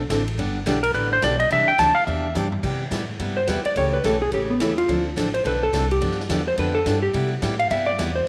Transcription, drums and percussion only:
0.10 kick, snare, hi-hat pedal, ride
0.28 ride
0.38 kick, ride
0.66 kick, snare, hi-hat pedal, ride
0.83 ride
0.94 kick
1.22 kick, snare, hi-hat pedal, ride
1.40 ride
1.50 kick, ride
1.79 kick, snare, hi-hat pedal, ride
2.07 mid tom
2.35 hi-hat pedal, mid tom
2.52 floor tom
2.63 kick, crash
2.91 kick, snare, hi-hat pedal, ride
3.20 kick, ride
3.47 kick, snare, hi-hat pedal, ride
3.65 ride
3.76 kick, ride
4.04 kick, snare, hi-hat pedal, ride
4.32 kick, ride
4.60 kick, snare, hi-hat pedal, ride
4.78 ride
4.89 kick, ride
5.17 kick, snare, hi-hat pedal, ride
5.34 ride
5.45 kick, ride
5.73 kick, snare, hi-hat pedal, ride
5.91 ride
6.01 kick, ride
6.11 snare
6.20 snare
6.30 kick, snare, hi-hat pedal, ride
6.57 kick, ride
6.86 kick, snare, hi-hat pedal, ride
7.14 kick, ride
7.42 kick, snare, hi-hat pedal, ride
7.59 ride
7.71 kick, ride
7.99 kick, snare, hi-hat pedal, ride

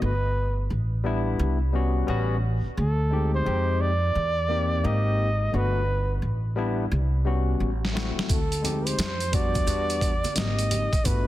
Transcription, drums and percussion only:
7.85 snare
7.97 snare
8.19 snare
8.29 kick, closed hi-hat, maracas
8.52 closed hi-hat, maracas
8.65 closed hi-hat, low conga, maracas
8.87 closed hi-hat, maracas
8.99 snare, closed hi-hat, maracas
9.20 closed hi-hat, maracas
9.33 kick, closed hi-hat, low conga, maracas
9.55 kick, closed hi-hat, maracas
9.67 closed hi-hat, maracas
9.90 closed hi-hat, maracas
10.01 kick, closed hi-hat, maracas
10.24 closed hi-hat, high conga, maracas
10.36 snare, closed hi-hat, maracas
10.59 closed hi-hat, maracas
10.71 closed hi-hat, high conga, low conga, maracas
10.93 kick, closed hi-hat, maracas
11.05 kick, closed hi-hat, maracas

